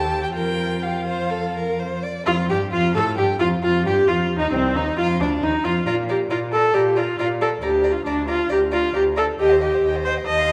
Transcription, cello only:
0.00 0.33 D#2 medium
0.34 2.02 F2 medium
2.26 2.51 F2 medium
2.49 2.71 G2 medium
2.72 2.96 F2 medium
2.94 3.18 A2 medium
3.16 3.39 G2 medium
3.40 3.62 F2 medium
3.62 3.86 F2 medium
3.85 4.06 G2 medium
4.07 4.36 F2 medium
4.37 4.43 D#2 medium
4.52 4.76 C2 medium
4.74 4.96 D#2 medium
4.97 5.22 F2 medium
5.20 5.42 D2 medium
5.42 5.50 D#2 medium
5.65 5.86 F2 medium
5.87 6.26 A#2 medium
6.31 6.70 A#2 medium
6.75 7.14 A#2 medium
7.19 7.58 A#2 medium
7.62 8.01 D2 medium
8.06 8.46 D2 medium
8.50 8.90 D2 medium
8.95 9.34 D2 medium
9.39 9.78 D#2 medium
9.83 10.22 D#2 medium
10.26 10.52 D#2 medium

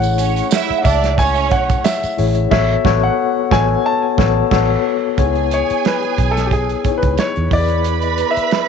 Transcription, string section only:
0.18 0.45 C#4 medium
0.18 0.45 C#5 medium
0.52 0.78 E4 loud
0.52 0.78 E5 loud
0.84 1.11 D4 medium
0.84 1.11 D5 loud
1.18 1.81 C#4 loud
1.18 1.81 C#5 loud
5.19 7.14 G#4 medium
5.19 7.14 G#5 medium
7.51 8.68 B4 medium
7.51 8.68 B5 medium

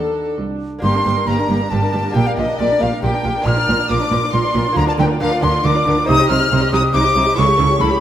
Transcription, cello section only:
0.00 0.36 D#2 medium
0.39 0.80 C2 medium
0.83 0.91 G2 medium
1.05 1.13 G2 medium
1.27 1.35 G2 medium
1.49 1.57 G2 medium
1.72 1.80 G2 medium
1.93 2.01 G2 medium
2.15 2.23 A#2 medium
2.37 2.45 A#2 medium
2.59 2.67 A#2 medium
2.81 2.89 A#2 medium
3.03 3.11 A#2 medium
3.24 3.32 A#2 medium
3.46 3.54 A#2 medium
3.67 3.75 A#2 medium
3.89 3.97 A#2 medium
4.11 4.19 A#2 medium
4.33 4.41 A#2 medium
4.55 4.63 A#2 medium
4.76 4.84 D3 medium
4.98 5.06 D3 medium
5.21 5.29 D3 medium
5.42 5.50 D3 medium
5.64 5.72 D3 medium
5.87 5.95 D3 medium
6.08 6.16 C3 medium
6.30 6.38 C3 medium
6.51 6.59 C3 medium
6.73 6.81 C3 medium
6.94 7.02 C3 medium
7.16 7.24 C3 medium
7.38 7.46 C#3 medium
7.59 7.67 C#3 medium
7.80 7.88 C#3 medium

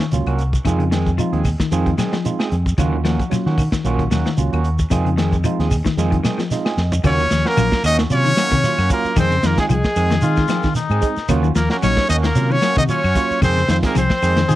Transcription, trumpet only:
7.06 7.49 C#5 loud
7.47 7.85 A#4 loud
7.86 7.97 D#5 loud
8.13 8.88 C#5 loud
8.92 9.16 A#4 medium
9.19 9.48 C5 loud
9.46 9.59 A#4 medium
9.60 9.65 G#4 medium
9.71 10.47 G#4 medium
11.56 11.70 A#4 medium
11.71 11.77 A#4 medium
11.83 12.08 C#5 loud
12.10 12.16 D#5 loud
12.25 12.53 A#4 medium
12.51 12.77 C#5 loud
12.78 12.83 D#5 loud
12.90 13.39 C#5 medium
13.43 13.68 C5 loud
13.71 13.77 C5 medium
13.85 13.96 A#4 medium
13.99 14.55 C5 medium

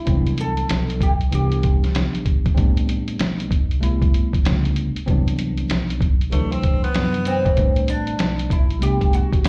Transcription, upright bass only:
0.07 0.67 C2 loud
0.70 1.29 B1 loud
1.33 1.92 C2 loud
1.95 2.43 A#1 medium
2.46 muted upright bass stroke soft
2.58 3.17 A1 loud
3.20 3.79 B1 medium
3.82 4.42 C2 medium
4.45 4.93 C#2 loud
4.96 muted upright bass stroke soft
5.08 5.67 C2 loud
5.69 6.29 B1 medium
6.32 6.92 D2 medium
6.95 7.54 F#2 medium
7.57 8.17 A1 loud
8.19 8.79 B1 medium
8.82 9.42 C2 medium
9.45 9.49 C#2 medium

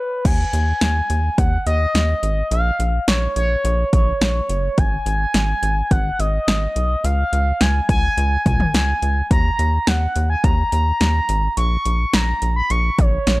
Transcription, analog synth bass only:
0.25 0.45 D#2 loud
0.53 0.73 D#2 loud
0.82 1.01 D#2 loud
1.10 1.30 D#2 medium
1.38 1.58 D#2 loud
1.66 1.86 D#2 loud
1.95 2.15 D#2 loud
2.23 2.43 G#1 medium
2.51 2.71 A#1 loud
2.80 2.99 A#1 medium
3.08 3.28 A#1 loud
3.36 3.56 A#1 medium
3.65 3.84 A#1 loud
3.93 4.13 A#1 loud
4.21 4.41 A#1 loud
4.49 4.69 F#1 medium
4.78 4.98 G#1 loud
5.06 5.26 G#1 loud
5.34 5.54 G#1 loud
5.63 5.83 G#1 medium
5.91 6.11 G#1 loud
6.19 6.39 G#1 loud
6.48 6.67 G#1 loud
6.76 6.96 B1 medium
7.04 7.24 C#2 loud
7.33 7.52 C#2 loud
7.61 7.81 C#2 loud
7.89 8.09 C#2 medium
8.17 8.37 C#2 loud
8.46 8.66 C#2 loud
8.74 8.94 C#2 loud
9.02 9.22 C#2 loud
9.31 9.51 D#2 loud
9.59 9.79 D#2 loud
9.87 10.07 D#2 loud
10.16 10.36 D#2 medium
10.44 10.64 D#2 loud
10.72 10.92 D#2 loud
11.01 11.20 D#2 loud
11.29 11.49 G#1 loud
11.57 11.77 A#1 loud
11.86 12.05 A#1 medium
12.14 12.34 A#1 loud
12.42 12.62 A#1 medium
12.70 12.90 A#1 loud
12.99 13.18 A#1 loud
13.27 13.40 A#1 loud

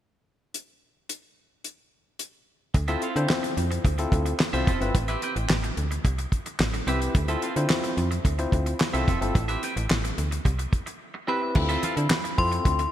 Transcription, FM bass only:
2.75 2.96 D2 loud
3.16 3.27 D3 loud
3.57 3.79 F2 medium
3.85 4.06 D2 medium
4.12 4.34 D2 loud
4.53 4.64 C2 medium
4.67 4.78 F1 medium
4.81 4.92 G1 medium
4.95 5.16 A1 loud
5.36 5.47 A1 loud
5.50 5.71 A1 loud
5.77 5.99 D2 medium
6.05 6.27 C2 medium
6.60 6.82 A1 medium
6.87 7.09 C2 medium
7.15 7.37 D2 loud
7.56 7.67 D3 medium
7.97 8.19 F2 loud
8.25 8.47 D2 medium
8.52 8.74 D2 loud
8.94 9.05 C2 medium
9.08 9.19 F1 medium
9.22 9.32 G1 medium
9.35 9.57 A1 loud
9.77 9.87 A1 loud
9.90 10.12 A1 loud
10.18 10.40 D2 medium
10.45 10.67 C2 loud
11.55 11.77 D2 loud
11.97 12.08 D3 loud
12.38 12.60 F2 loud
12.65 12.87 D2 medium

